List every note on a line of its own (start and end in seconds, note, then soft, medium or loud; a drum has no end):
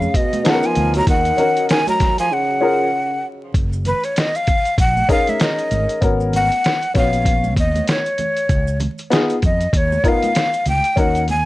0.00 0.18 C#3 medium
0.00 0.17 F5 medium
0.00 high conga medium
0.00 maracas soft
0.14 0.46 B2 medium
0.14 0.46 D#5 medium
0.14 kick medium
0.14 closed hi-hat medium
0.14 maracas soft
0.33 closed hi-hat soft
0.33 high conga medium
0.33 maracas soft
0.44 0.66 C#3 medium
0.44 1.07 B3 medium
0.44 1.07 D#4 medium
0.44 1.08 F4 medium
0.44 0.54 A4 medium
0.44 0.67 F#5 medium
0.44 snare loud
0.44 closed hi-hat medium
0.44 maracas medium
0.53 1.11 A#4 medium
0.63 0.95 F3 medium
0.63 0.96 G#5 loud
0.63 closed hi-hat soft
0.63 maracas medium
0.75 1.00 D2 medium
0.75 closed hi-hat medium
0.75 high conga soft
0.75 low conga medium
0.75 maracas soft
0.94 1.07 F#3 medium
0.94 1.08 A#5 medium
0.94 closed hi-hat medium
0.94 maracas soft
1.07 1.30 D#2 loud
1.07 1.66 D#3 medium
1.07 1.66 F#5 loud
1.07 kick loud
1.07 closed hi-hat medium
1.07 maracas medium
1.25 closed hi-hat soft
1.25 maracas soft
1.37 1.76 C#4 medium
1.37 1.76 D#4 medium
1.37 1.77 F#4 medium
1.37 1.77 A#4 medium
1.37 closed hi-hat medium
1.37 low conga medium
1.37 maracas soft
1.57 closed hi-hat soft
1.57 maracas soft
1.69 1.86 D#3 medium
1.69 1.87 G#5 loud
1.69 snare loud
1.69 closed hi-hat medium
1.69 maracas medium
1.87 2.16 F#3 medium
1.87 2.17 A#5 loud
1.87 closed hi-hat soft
1.87 high conga medium
1.87 maracas medium
2.00 kick medium
2.00 snare soft
2.00 closed hi-hat medium
2.00 low conga medium
2.00 maracas soft
2.18 2.33 F3 medium
2.18 2.35 G#5 medium
2.18 closed hi-hat medium
2.18 maracas soft
2.32 3.24 C#3 medium
2.32 3.25 F#5 medium
2.60 2.85 C#4 medium
2.60 2.85 F4 medium
2.60 2.85 G#4 medium
2.60 2.86 A#4 medium
3.54 3.91 F#1 medium
3.54 kick loud
3.54 closed hi-hat medium
3.54 maracas medium
3.73 maracas medium
3.85 4.06 B4 medium
3.85 closed hi-hat medium
3.85 high conga soft
3.85 low conga medium
3.85 maracas soft
4.04 4.20 C#5 medium
4.04 closed hi-hat soft
4.04 maracas soft
4.16 4.37 D#5 medium
4.16 snare loud
4.16 closed hi-hat medium
4.16 maracas medium
4.35 4.79 F5 loud
4.35 closed hi-hat soft
4.35 maracas soft
4.47 kick medium
4.47 closed hi-hat medium
4.47 low conga medium
4.47 maracas soft
4.65 closed hi-hat soft
4.65 maracas soft
4.78 5.02 A#1 medium
4.78 5.08 F#5 loud
4.78 kick medium
4.78 closed hi-hat medium
4.78 maracas medium
4.97 high conga medium
4.97 maracas soft
5.08 5.97 C#4 medium
5.08 5.97 D#4 medium
5.08 5.97 G#4 medium
5.08 5.98 A#4 medium
5.08 5.31 F5 loud
5.08 kick medium
5.08 closed hi-hat medium
5.08 maracas soft
5.27 5.44 E5 medium
5.27 closed hi-hat soft
5.27 high conga medium
5.27 maracas soft
5.40 6.03 D#5 medium
5.40 snare loud
5.40 closed hi-hat medium
5.40 maracas medium
5.59 closed hi-hat soft
5.59 maracas medium
5.71 5.85 G#1 medium
5.71 closed hi-hat medium
5.71 high conga soft
5.71 low conga medium
5.71 maracas soft
5.89 closed hi-hat soft
5.89 maracas soft
6.01 6.49 G#1 loud
6.01 6.47 B3 medium
6.01 6.48 C#4 medium
6.01 6.48 F#4 medium
6.01 6.49 A#4 medium
6.01 kick loud
6.01 closed hi-hat medium
6.01 maracas medium
6.20 maracas medium
6.33 6.93 F#5 loud
6.33 closed hi-hat medium
6.33 high conga soft
6.33 low conga medium
6.33 maracas soft
6.52 closed hi-hat soft
6.52 maracas soft
6.64 snare loud
6.64 closed hi-hat medium
6.64 maracas medium
6.83 closed hi-hat soft
6.83 maracas soft
6.94 7.56 A#1 loud
6.94 7.82 B3 medium
6.94 7.83 C#4 medium
6.94 7.83 F#4 medium
6.94 7.83 C#5 medium
6.94 7.54 F5 loud
6.94 kick medium
6.94 snare soft
6.94 closed hi-hat medium
6.94 low conga medium
6.94 maracas soft
7.13 closed hi-hat medium
7.13 maracas soft
7.25 kick medium
7.25 closed hi-hat medium
7.25 maracas soft
7.44 high conga medium
7.44 maracas soft
7.56 7.80 D#2 medium
7.56 7.87 D#5 medium
7.56 kick medium
7.56 closed hi-hat medium
7.56 maracas soft
7.76 closed hi-hat soft
7.76 high conga medium
7.76 maracas soft
7.87 8.78 C#5 medium
7.87 snare loud
7.87 closed hi-hat medium
7.87 maracas medium
8.06 closed hi-hat soft
8.06 maracas soft
8.18 closed hi-hat medium
8.18 high conga soft
8.18 low conga medium
8.18 maracas soft
8.37 closed hi-hat soft
8.37 maracas soft
8.49 8.86 C#2 loud
8.49 kick loud
8.49 closed hi-hat medium
8.49 maracas medium
8.67 maracas medium
8.80 closed hi-hat medium
8.80 high conga soft
8.80 low conga medium
8.80 maracas soft
8.98 closed hi-hat soft
8.98 maracas soft
9.10 9.34 B3 medium
9.10 9.35 D#4 medium
9.10 9.35 F4 medium
9.10 9.35 G#4 medium
9.10 snare loud
9.10 closed hi-hat medium
9.10 maracas medium
9.30 closed hi-hat soft
9.30 maracas soft
9.42 9.66 F2 medium
9.42 9.78 D#5 medium
9.42 kick medium
9.42 closed hi-hat medium
9.42 low conga medium
9.42 maracas soft
9.61 closed hi-hat medium
9.61 maracas soft
9.73 9.96 D#2 medium
9.73 10.10 C#5 medium
9.73 kick medium
9.73 closed hi-hat medium
9.73 maracas medium
9.92 high conga medium
9.92 maracas soft
10.04 10.27 B3 medium
10.04 10.28 D#4 medium
10.04 10.28 F4 medium
10.04 10.28 A#4 medium
10.04 kick medium
10.04 closed hi-hat medium
10.04 maracas soft
10.08 10.68 F5 loud
10.23 closed hi-hat soft
10.23 high conga medium
10.23 maracas soft
10.35 snare loud
10.35 closed hi-hat loud
10.35 maracas medium
10.53 closed hi-hat soft
10.53 maracas medium
10.66 10.80 C#2 medium
10.66 11.01 G5 loud
10.66 closed hi-hat medium
10.66 high conga soft
10.66 low conga medium
10.66 maracas soft
10.84 closed hi-hat medium
10.84 maracas soft
10.96 11.43 D#2 loud
10.96 11.20 C#4 medium
10.96 11.20 D#4 medium
10.96 11.21 F#4 medium
10.96 11.21 A#4 medium
10.96 11.29 F#5 loud
10.96 kick loud
10.96 closed hi-hat medium
10.96 maracas medium
11.15 closed hi-hat soft
11.15 maracas soft
11.28 11.45 G#5 loud
11.28 closed hi-hat medium
11.28 high conga medium
11.28 low conga medium
11.28 maracas soft